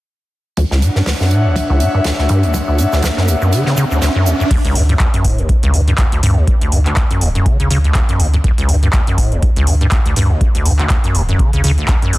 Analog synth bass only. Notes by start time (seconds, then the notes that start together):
4.75 D2
5.24 D1
5.63 D2
5.74 D2
6.23 D2
6.72 D2
7.21 D1
7.60 D2
7.70 D2
8.20 D2
8.69 D2
9.18 D1
9.56 D2
9.67 D2
10.16 D2
10.65 D2
11.15 D1
11.53 D2
11.64 D2
12.13 D2